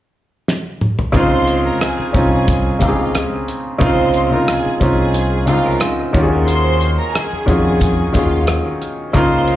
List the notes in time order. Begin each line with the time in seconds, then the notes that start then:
0.48 snare
0.81 mid tom
0.99 floor tom
1.12 C#2 C#3 C4 D#4 F4 C5 C6, kick, closed hi-hat
1.47 closed hi-hat
1.66 A#4 A#5
1.81 G#4 G#5, cross-stick, closed hi-hat
1.99 muted fingered electric bass stroke
2.13 C2 C4 C#4 D#4 F4 G#4 G#5, kick, closed hi-hat
2.48 kick, closed hi-hat
2.79 C#2 C#3 C4 D#4 F4 G4 F5, kick, closed hi-hat
2.89 G#4
3.15 cross-stick, closed hi-hat
3.48 cross-stick, closed hi-hat
3.79 C#2 C#3 C4 D#4 F4 C5 C6, kick, closed hi-hat
4.14 closed hi-hat
4.30 C#3 C4 D#4 F4 A#4 A#5
4.48 G#4 G#5, cross-stick, closed hi-hat
4.66 muted fingered electric bass stroke
4.80 C2 C4 C#4 D#4 F4 G#4 G#5, kick, closed hi-hat
5.14 closed hi-hat
5.46 C#2 C#3 C4 D#4 F4 F5, closed hi-hat
5.66 C#4 A#4
5.80 D#4 C5, cross-stick, closed hi-hat
6.13 D#2 D#3 C#4 F4 F#4 G4 C#5, kick, closed hi-hat
6.23 G#4
6.32 C#4 A#4
6.47 C5 C6, closed hi-hat
6.81 closed hi-hat
6.99 A#4 A#5
7.14 G#4 G#5, cross-stick, closed hi-hat
7.33 muted fingered electric bass stroke
7.46 F2 D#3 C#4 F4 F#4 G#4 G#5, kick, closed hi-hat
7.81 kick, closed hi-hat
8.13 D#2 D#3 C#4 F4 F#4 G#4 F5, kick, closed hi-hat
8.47 cross-stick, closed hi-hat
8.82 cross-stick, closed hi-hat
9.13 C#2 C#3 A#3 D#4 F4 C5 C6, kick, closed hi-hat
9.48 closed hi-hat